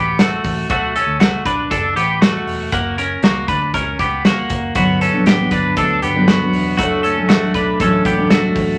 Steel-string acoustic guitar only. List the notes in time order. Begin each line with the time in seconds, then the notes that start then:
4.75 D3 F#3 B3 D4
5.13 F#3 B3 D4
5.39 F#3 B3 D4
5.78 D3 F#3 B3 D4
6.16 G2 D3 F#3 B3 D4
6.41 F#3 B3 D4
6.80 F#3 A3 D4
7.16 F#3 A3 D4
7.42 F#3 A3 D4
7.81 F#3 A3 D4
8.18 F#2 C#3 F#3 A3 D4
8.43 F#3 A3 D4